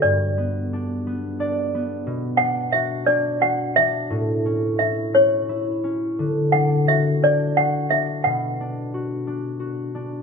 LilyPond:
<<
  \new Staff \with { instrumentName = "Toy piano" } { \time 6/8 \key b \minor \tempo 4. = 59 d''2~ d''8 r8 | r8 fis''8 e''8 d''8 fis''8 e''8~ | e''4 e''8 cis''4 r8 | r8 fis''8 e''8 d''8 fis''8 e''8 |
fis''2 r4 | }
  \new Staff \with { instrumentName = "Harp" } { \time 6/8 \key b \minor << { r2 d''4 | r2. | r2. | r2. |
r2. | } \\ { g,8 b8 d'8 b8 d'8 b8 | b,8 d'8 fis'8 d'8 fis'8 d'8 | a,8 cis'8 e'8 cis'8 e'8 cis'8 | d8 d'8 fis'8 d'8 fis'8 d'8 |
b,8 d'8 fis'8 d'8 fis'8 d'8 | } >> }
>>